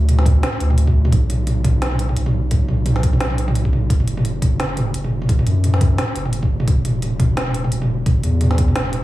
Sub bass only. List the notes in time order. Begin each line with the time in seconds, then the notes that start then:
Already playing: D2
0.60 D2
1.12 B1
1.82 B1
2.16 B1
2.68 B1
3.20 B1
3.90 F#1
4.60 F#1
4.94 F#1
5.47 F#2
6.16 F#1
6.67 E1
7.37 E1
7.72 E1
8.24 E2
8.76 E1